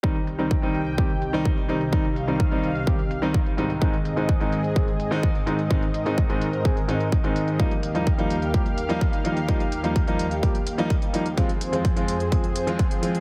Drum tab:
HH |-xxxxxxxxxxx-xxx|xxxxxxxxxxxxxxxx|xxxxxxxxxxxxxxxx|xxxxxxxxxxxxxxxx|
BD |o---o---o---o---|o---o---o---o---|o---o---o---o---|o---o---o---o---|

HH |xxxxxxxxxxxxxxxx|xxxxxxxxxxxxxxxx|xxxxxxxxxxxxxxxx|
BD |o---o---o---o---|o---o---o---o---|o---o---o---o---|